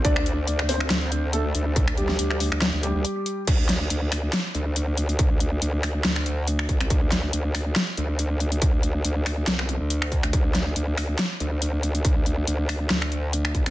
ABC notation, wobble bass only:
X:1
M:4/4
L:1/16
Q:"Swing 16ths" 1/4=140
K:Cmix
V:1 name="Wobble bass" clef=bass
D,,8 D,,6 D,,2- | D,,4 D,,3 D,,2 D,,2 D,, z4 | D,,4 D,,4 z2 D,,6 | D,,4 D,,4 D,,6 D,, C,, |
D,,4 D,,4 z2 D,,6 | D,,4 D,,4 C,,3 D,,4- D,, | D,,4 D,,4 z2 D,,6 | D,,4 D,,4 D,,6 D,, C,, |]